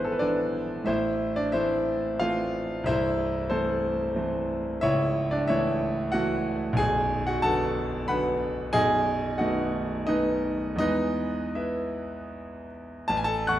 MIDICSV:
0, 0, Header, 1, 2, 480
1, 0, Start_track
1, 0, Tempo, 668896
1, 633, Time_signature, 3, 2, 24, 8
1, 2064, Tempo, 652174
1, 6864, Tempo, 707547
1, 7824, Tempo, 770218
1, 9556, End_track
2, 0, Start_track
2, 0, Title_t, "Grand piano"
2, 0, Program_c, 0, 0
2, 0, Control_c, 0, 64, 127
2, 0, Note_on_c, 0, 32, 52
2, 0, Note_on_c, 0, 44, 47
2, 0, Note_on_c, 0, 52, 37
2, 0, Note_on_c, 0, 59, 57
2, 0, Note_on_c, 0, 62, 41
2, 0, Note_on_c, 0, 64, 65
2, 0, Note_on_c, 0, 68, 52
2, 0, Note_on_c, 0, 71, 62
2, 0, Note_on_c, 0, 72, 61
2, 0, Note_on_c, 0, 76, 91
2, 32, Note_on_c, 0, 69, 61
2, 87, Note_off_c, 0, 71, 0
2, 87, Note_on_c, 0, 71, 62
2, 90, Note_off_c, 0, 69, 0
2, 119, Note_off_c, 0, 52, 0
2, 123, Note_off_c, 0, 62, 0
2, 136, Note_off_c, 0, 71, 0
2, 138, Note_on_c, 0, 74, 78
2, 146, Note_on_c, 0, 71, 60
2, 149, Note_on_c, 0, 62, 59
2, 153, Note_on_c, 0, 52, 42
2, 156, Note_off_c, 0, 59, 0
2, 156, Note_on_c, 0, 59, 37
2, 603, Note_off_c, 0, 32, 0
2, 603, Note_off_c, 0, 71, 0
2, 604, Note_off_c, 0, 44, 0
2, 604, Note_off_c, 0, 62, 0
2, 605, Note_on_c, 0, 45, 52
2, 606, Note_off_c, 0, 52, 0
2, 608, Note_off_c, 0, 59, 0
2, 614, Note_off_c, 0, 76, 0
2, 614, Note_on_c, 0, 76, 83
2, 622, Note_off_c, 0, 72, 0
2, 622, Note_on_c, 0, 72, 73
2, 625, Note_off_c, 0, 64, 0
2, 625, Note_on_c, 0, 64, 71
2, 626, Note_on_c, 0, 33, 59
2, 628, Note_off_c, 0, 74, 0
2, 645, Control_c, 0, 64, 0
2, 649, Note_off_c, 0, 68, 0
2, 756, Control_c, 0, 64, 127
2, 959, Note_off_c, 0, 72, 0
2, 960, Note_off_c, 0, 64, 0
2, 977, Note_on_c, 0, 74, 77
2, 980, Note_off_c, 0, 76, 0
2, 984, Note_on_c, 0, 62, 57
2, 1092, Note_on_c, 0, 76, 83
2, 1097, Note_off_c, 0, 62, 0
2, 1100, Note_on_c, 0, 72, 66
2, 1101, Note_on_c, 0, 64, 69
2, 1102, Note_off_c, 0, 74, 0
2, 1102, Note_on_c, 0, 52, 42
2, 1106, Note_on_c, 0, 57, 41
2, 1109, Note_on_c, 0, 60, 41
2, 1557, Note_off_c, 0, 64, 0
2, 1557, Note_off_c, 0, 72, 0
2, 1558, Note_off_c, 0, 52, 0
2, 1560, Note_off_c, 0, 57, 0
2, 1561, Note_off_c, 0, 60, 0
2, 1575, Note_on_c, 0, 77, 83
2, 1582, Note_off_c, 0, 76, 0
2, 1582, Note_on_c, 0, 65, 69
2, 1584, Note_on_c, 0, 52, 42
2, 1591, Note_on_c, 0, 57, 46
2, 1598, Note_on_c, 0, 60, 48
2, 2020, Note_off_c, 0, 45, 0
2, 2030, Note_off_c, 0, 65, 0
2, 2031, Note_off_c, 0, 33, 0
2, 2031, Note_off_c, 0, 52, 0
2, 2035, Note_off_c, 0, 57, 0
2, 2036, Note_on_c, 0, 36, 66
2, 2038, Note_off_c, 0, 60, 0
2, 2052, Note_on_c, 0, 76, 99
2, 2056, Note_off_c, 0, 77, 0
2, 2056, Note_on_c, 0, 72, 76
2, 2059, Note_on_c, 0, 64, 82
2, 2061, Note_on_c, 0, 24, 60
2, 2074, Control_c, 0, 64, 0
2, 2168, Control_c, 0, 64, 127
2, 2505, Note_off_c, 0, 72, 0
2, 2506, Note_off_c, 0, 64, 0
2, 2520, Note_on_c, 0, 72, 83
2, 2526, Note_on_c, 0, 69, 60
2, 2529, Note_on_c, 0, 60, 55
2, 2531, Note_on_c, 0, 52, 41
2, 2532, Note_off_c, 0, 76, 0
2, 2533, Note_on_c, 0, 57, 45
2, 2980, Note_off_c, 0, 69, 0
2, 2982, Note_off_c, 0, 60, 0
2, 2983, Note_off_c, 0, 52, 0
2, 2984, Note_off_c, 0, 57, 0
2, 3007, Note_off_c, 0, 72, 0
2, 3008, Note_on_c, 0, 52, 48
2, 3009, Note_on_c, 0, 60, 50
2, 3011, Note_on_c, 0, 57, 45
2, 3457, Note_off_c, 0, 36, 0
2, 3467, Note_off_c, 0, 52, 0
2, 3468, Note_off_c, 0, 60, 0
2, 3469, Note_off_c, 0, 57, 0
2, 3470, Note_off_c, 0, 24, 0
2, 3489, Note_on_c, 0, 76, 99
2, 3499, Note_on_c, 0, 73, 81
2, 3501, Note_on_c, 0, 64, 74
2, 3504, Note_on_c, 0, 37, 69
2, 3505, Note_on_c, 0, 25, 62
2, 3511, Control_c, 0, 64, 0
2, 3604, Control_c, 0, 64, 127
2, 3838, Note_off_c, 0, 73, 0
2, 3839, Note_off_c, 0, 64, 0
2, 3855, Note_on_c, 0, 74, 74
2, 3859, Note_off_c, 0, 76, 0
2, 3866, Note_on_c, 0, 62, 62
2, 3976, Note_off_c, 0, 62, 0
2, 3977, Note_on_c, 0, 76, 86
2, 3979, Note_off_c, 0, 74, 0
2, 3985, Note_on_c, 0, 64, 69
2, 3990, Note_on_c, 0, 73, 72
2, 3991, Note_on_c, 0, 52, 48
2, 3994, Note_on_c, 0, 57, 54
2, 4430, Note_off_c, 0, 64, 0
2, 4432, Note_off_c, 0, 73, 0
2, 4433, Note_off_c, 0, 52, 0
2, 4434, Note_off_c, 0, 57, 0
2, 4449, Note_on_c, 0, 78, 96
2, 4455, Note_off_c, 0, 76, 0
2, 4459, Note_on_c, 0, 66, 76
2, 4464, Note_on_c, 0, 52, 49
2, 4469, Note_on_c, 0, 57, 53
2, 4901, Note_on_c, 0, 35, 74
2, 4907, Note_off_c, 0, 66, 0
2, 4908, Note_off_c, 0, 25, 0
2, 4908, Note_off_c, 0, 37, 0
2, 4909, Note_off_c, 0, 52, 0
2, 4911, Note_off_c, 0, 57, 0
2, 4929, Note_on_c, 0, 80, 104
2, 4931, Note_off_c, 0, 78, 0
2, 4940, Note_on_c, 0, 68, 82
2, 4942, Note_on_c, 0, 23, 62
2, 4949, Control_c, 0, 64, 0
2, 5064, Control_c, 0, 64, 127
2, 5272, Note_off_c, 0, 68, 0
2, 5292, Note_off_c, 0, 80, 0
2, 5295, Note_on_c, 0, 78, 87
2, 5306, Note_on_c, 0, 66, 66
2, 5410, Note_off_c, 0, 78, 0
2, 5410, Note_on_c, 0, 81, 99
2, 5413, Note_off_c, 0, 66, 0
2, 5416, Note_on_c, 0, 69, 76
2, 5421, Note_on_c, 0, 50, 46
2, 5421, Note_on_c, 0, 78, 78
2, 5424, Note_on_c, 0, 54, 45
2, 5430, Note_on_c, 0, 59, 53
2, 5871, Note_off_c, 0, 69, 0
2, 5873, Note_off_c, 0, 50, 0
2, 5873, Note_off_c, 0, 78, 0
2, 5874, Note_off_c, 0, 54, 0
2, 5877, Note_off_c, 0, 59, 0
2, 5892, Note_on_c, 0, 83, 89
2, 5897, Note_off_c, 0, 81, 0
2, 5899, Note_on_c, 0, 78, 69
2, 5900, Note_on_c, 0, 71, 64
2, 5903, Note_on_c, 0, 50, 45
2, 5909, Note_on_c, 0, 59, 54
2, 5910, Note_on_c, 0, 54, 46
2, 6334, Note_off_c, 0, 35, 0
2, 6351, Note_off_c, 0, 78, 0
2, 6352, Note_off_c, 0, 71, 0
2, 6353, Note_off_c, 0, 50, 0
2, 6355, Note_off_c, 0, 23, 0
2, 6356, Note_off_c, 0, 59, 0
2, 6357, Note_off_c, 0, 54, 0
2, 6370, Note_on_c, 0, 80, 117
2, 6374, Note_on_c, 0, 75, 90
2, 6377, Note_off_c, 0, 83, 0
2, 6377, Note_on_c, 0, 68, 88
2, 6381, Note_on_c, 0, 35, 68
2, 6382, Note_on_c, 0, 23, 62
2, 6393, Control_c, 0, 64, 0
2, 6503, Control_c, 0, 64, 127
2, 6833, Note_off_c, 0, 75, 0
2, 6834, Note_off_c, 0, 68, 0
2, 6851, Note_on_c, 0, 78, 74
2, 6858, Note_on_c, 0, 75, 55
2, 6860, Note_off_c, 0, 80, 0
2, 6861, Note_on_c, 0, 66, 58
2, 6868, Note_on_c, 0, 51, 47
2, 6870, Note_on_c, 0, 57, 50
2, 6872, Note_on_c, 0, 59, 49
2, 7301, Note_off_c, 0, 75, 0
2, 7302, Note_off_c, 0, 66, 0
2, 7305, Note_off_c, 0, 51, 0
2, 7307, Note_off_c, 0, 57, 0
2, 7307, Note_off_c, 0, 59, 0
2, 7317, Note_on_c, 0, 75, 85
2, 7324, Note_off_c, 0, 78, 0
2, 7326, Note_on_c, 0, 71, 66
2, 7327, Note_on_c, 0, 63, 67
2, 7328, Note_on_c, 0, 51, 45
2, 7331, Note_on_c, 0, 57, 46
2, 7336, Note_on_c, 0, 59, 50
2, 7785, Note_on_c, 0, 40, 60
2, 7794, Note_on_c, 0, 52, 44
2, 7795, Note_off_c, 0, 71, 0
2, 7795, Note_off_c, 0, 75, 0
2, 7796, Note_off_c, 0, 63, 0
2, 7797, Note_off_c, 0, 51, 0
2, 7798, Note_off_c, 0, 35, 0
2, 7798, Note_off_c, 0, 57, 0
2, 7799, Note_off_c, 0, 23, 0
2, 7801, Note_off_c, 0, 59, 0
2, 7804, Note_on_c, 0, 56, 44
2, 7805, Note_on_c, 0, 75, 97
2, 7812, Note_on_c, 0, 63, 77
2, 7813, Note_on_c, 0, 59, 45
2, 7815, Note_on_c, 0, 71, 72
2, 7836, Control_c, 0, 64, 0
2, 7956, Control_c, 0, 64, 127
2, 8270, Note_off_c, 0, 63, 0
2, 8271, Note_off_c, 0, 71, 0
2, 8285, Note_on_c, 0, 76, 67
2, 8291, Note_on_c, 0, 71, 52
2, 8292, Note_off_c, 0, 75, 0
2, 8293, Note_on_c, 0, 64, 51
2, 8973, Note_off_c, 0, 71, 0
2, 8974, Note_off_c, 0, 64, 0
2, 8995, Note_off_c, 0, 76, 0
2, 9209, Note_off_c, 0, 40, 0
2, 9213, Note_off_c, 0, 52, 0
2, 9218, Note_off_c, 0, 56, 0
2, 9222, Note_off_c, 0, 59, 0
2, 9235, Note_on_c, 0, 81, 104
2, 9244, Note_on_c, 0, 33, 68
2, 9266, Control_c, 0, 64, 0
2, 9293, Note_on_c, 0, 80, 82
2, 9294, Note_off_c, 0, 81, 0
2, 9339, Note_on_c, 0, 81, 104
2, 9344, Note_on_c, 0, 69, 71
2, 9347, Note_off_c, 0, 80, 0
2, 9381, Control_c, 0, 64, 127
2, 9481, Note_on_c, 0, 90, 97
2, 9488, Note_on_c, 0, 78, 77
2, 9489, Note_off_c, 0, 69, 0
2, 9491, Note_on_c, 0, 85, 82
2, 9496, Note_on_c, 0, 40, 50
2, 9497, Note_off_c, 0, 81, 0
2, 9556, Note_off_c, 0, 33, 0
2, 9556, Note_off_c, 0, 40, 0
2, 9556, Note_off_c, 0, 78, 0
2, 9556, Note_off_c, 0, 85, 0
2, 9556, Note_off_c, 0, 90, 0
2, 9556, End_track
0, 0, End_of_file